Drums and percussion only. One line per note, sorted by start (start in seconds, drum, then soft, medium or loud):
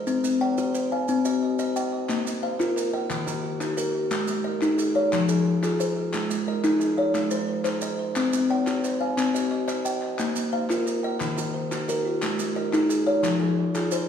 0.07 maracas medium
0.24 maracas medium
0.58 maracas medium
0.75 maracas medium
1.08 maracas medium
1.25 maracas medium
1.59 maracas medium
1.76 maracas medium
2.10 clap medium
2.10 maracas medium
2.26 clap soft
2.26 maracas medium
2.60 clap soft
2.60 maracas medium
2.78 clap soft
2.78 maracas medium
3.11 clap medium
3.11 maracas medium
3.28 maracas medium
3.61 clap soft
3.61 maracas medium
3.78 maracas medium
4.11 clap medium
4.11 maracas medium
4.27 clap soft
4.27 maracas medium
4.62 clap soft
4.62 maracas medium
4.79 clap soft
4.79 maracas medium
5.13 clap medium
5.13 maracas medium
5.29 maracas medium
5.64 clap soft
5.64 maracas medium
5.80 maracas medium
6.14 clap medium
6.14 maracas medium
6.31 clap soft
6.31 maracas medium
6.64 clap medium
6.64 maracas medium
6.81 clap soft
6.81 maracas medium
7.15 clap medium
7.15 maracas medium
7.31 maracas medium
7.65 clap medium
7.65 maracas medium
7.81 maracas medium
8.16 clap medium
8.16 maracas medium
8.33 clap soft
8.33 maracas medium
8.67 clap medium
8.67 maracas medium
8.84 clap soft
8.84 maracas medium
9.18 clap medium
9.18 maracas medium
9.36 clap soft
9.36 maracas medium
9.52 clap soft
9.69 clap medium
9.69 maracas medium
9.85 maracas medium
10.02 clap soft
10.19 clap medium
10.19 maracas medium
10.36 clap soft
10.36 maracas medium
10.70 clap medium
10.70 maracas medium
10.87 clap soft
10.87 maracas medium
11.21 clap medium
11.21 maracas medium
11.38 maracas medium
11.72 clap medium
11.72 maracas medium
11.89 maracas medium
12.22 clap medium
12.22 maracas medium
12.39 clap soft
12.39 maracas medium
12.73 clap medium
12.73 maracas medium
12.90 clap soft
12.90 maracas medium
13.24 clap medium
13.24 maracas medium
13.75 clap soft
13.75 maracas medium
13.91 maracas medium